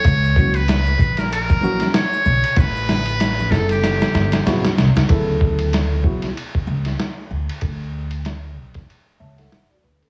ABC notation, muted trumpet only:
X:1
M:4/4
L:1/16
Q:"Swing 16ths" 1/4=95
K:D
V:1 name="Muted trumpet"
c3 B4 ^A A4 c4 | B6 A G6 z3 | z16 | z16 |]